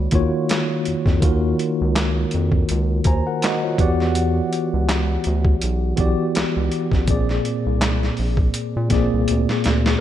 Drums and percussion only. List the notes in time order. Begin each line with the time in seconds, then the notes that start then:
0.11 kick, closed hi-hat
0.49 snare, clap, closed hi-hat
0.85 closed hi-hat
1.06 kick, snare
1.22 kick, closed hi-hat
1.59 closed hi-hat
1.96 snare, clap, closed hi-hat
2.31 closed hi-hat
2.52 kick
2.69 closed hi-hat
3.04 kick, closed hi-hat
3.42 snare, clap, closed hi-hat
3.78 kick, closed hi-hat
4.00 snare
4.15 closed hi-hat
4.53 closed hi-hat
4.89 snare, clap, closed hi-hat
5.24 closed hi-hat
5.45 kick
5.62 closed hi-hat
5.97 kick, closed hi-hat
6.35 snare, clap, closed hi-hat
6.72 closed hi-hat
6.92 kick, snare
7.07 kick, closed hi-hat
7.29 snare
7.45 closed hi-hat
7.82 snare, clap, closed hi-hat
8.03 snare
8.17 open hi-hat
8.37 kick
8.54 closed hi-hat
8.90 kick, snare, closed hi-hat
9.28 closed hi-hat
9.49 snare
9.64 snare, closed hi-hat
9.86 snare